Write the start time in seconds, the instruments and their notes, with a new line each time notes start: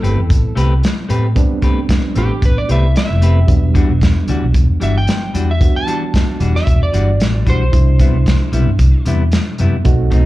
Already playing: reed electric piano G3 B3 C4 E4, electric slide guitar A4
0.02 fingered electric bass G1, clean electric guitar A3 C4 G4 B4, closed hi-hat
0.17 fingered electric bass E2
0.30 fingered electric bass A1, kick, closed hi-hat
0.55 fingered electric bass C2, clean electric guitar A3 C4 G4 B4, closed hi-hat
0.83 snare, closed hi-hat
1.09 fingered electric bass A2, clean electric guitar A3 C4 G4 B4, closed hi-hat
1.36 reed electric piano G3 B3 C4 D4, kick, closed hi-hat
1.62 clean electric guitar A3 C4 G4 B4, kick, closed hi-hat
1.89 kick, snare, closed hi-hat
2.15 fingered electric bass A1, clean electric guitar A3 C4 G4 B4, electric slide guitar G4, closed hi-hat
2.42 fingered electric bass A1, electric slide guitar B4, kick, closed hi-hat
2.58 electric slide guitar D5
2.68 fingered electric bass C2, reed electric piano G3 B3 C4 E4, clean electric guitar A3 C4 G4 B4, electric slide guitar E5, closed hi-hat
2.96 electric slide guitar E5, snare, closed hi-hat
3.10 fingered electric bass F1
3.21 clean electric guitar A3 C4 G4 B4, closed hi-hat
3.47 fingered electric bass E1, reed electric piano F#3 G3 B3 D4, kick, closed hi-hat
3.74 clean electric guitar E3 G3 D4 F#4, kick, closed hi-hat
3.89 fingered electric bass E1
4.01 kick, snare, closed hi-hat
4.28 fingered electric bass D2, clean electric guitar E3 G3 D4 F#4, closed hi-hat
4.43 fingered electric bass B1
4.54 fingered electric bass E1, kick, closed hi-hat
4.80 fingered electric bass G1, clean electric guitar E3 G3 D4 F#4, electric slide guitar E5, closed hi-hat
4.98 electric slide guitar G5
5.07 snare, closed hi-hat
5.34 fingered electric bass E2, clean electric guitar E3 G3 D4 F#4, closed hi-hat
5.51 electric slide guitar E5
5.60 reed electric piano G3 B3 D4 F#4, kick, closed hi-hat
5.76 electric slide guitar A5
5.87 clean electric guitar E3 G3 D4 F#4, closed hi-hat
6.14 kick, snare, closed hi-hat
6.40 fingered electric bass E1, clean electric guitar E3 G3 D4 F#4, closed hi-hat
6.56 electric slide guitar E5, snare
6.67 fingered electric bass E1, kick, closed hi-hat
6.83 electric slide guitar D5
6.93 fingered electric bass G1, clean electric guitar E3 G3 D4 F#4, closed hi-hat
7.19 fingered electric bass A1, snare, closed hi-hat
7.46 fingered electric bass B1, clean electric guitar E3 G3 D4 F#4, electric slide guitar C5, kick, closed hi-hat
7.72 fingered electric bass C2, reed electric piano B2 G3 D4 E4, kick, closed hi-hat
7.99 clean electric guitar C3 G3 B3 E4, kick, closed hi-hat
8.13 fingered electric bass C2
8.26 kick, snare, closed hi-hat
8.52 fingered electric bass B1, clean electric guitar C3 G3 B3 E4, closed hi-hat
8.66 fingered electric bass G2
8.79 fingered electric bass C2, kick, closed hi-hat
9.05 fingered electric bass E2, clean electric guitar C3 G3 B3 E4, closed hi-hat
9.32 snare, closed hi-hat
9.58 fingered electric bass F#2, clean electric guitar C3 G3 B3 E4, closed hi-hat
9.84 fingered electric bass B1, reed electric piano A3 C4 D#4 F#4, kick, closed hi-hat
10.10 clean electric guitar B2 A3 C4 D#4, kick, closed hi-hat